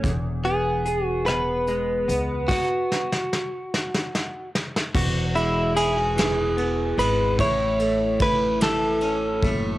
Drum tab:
CC |------------|x-----------|x-----------|------------|
RD |------------|------------|--x-x-x-x-x-|x-x-x-x-x-x-|
HH |x-x-x-x-x-x-|------------|------------|------------|
SD |------r-----|o-ooo-ooo-oo|------o-----|------o-----|
BD |o-----------|o-----------|o-----------|o---o-----o-|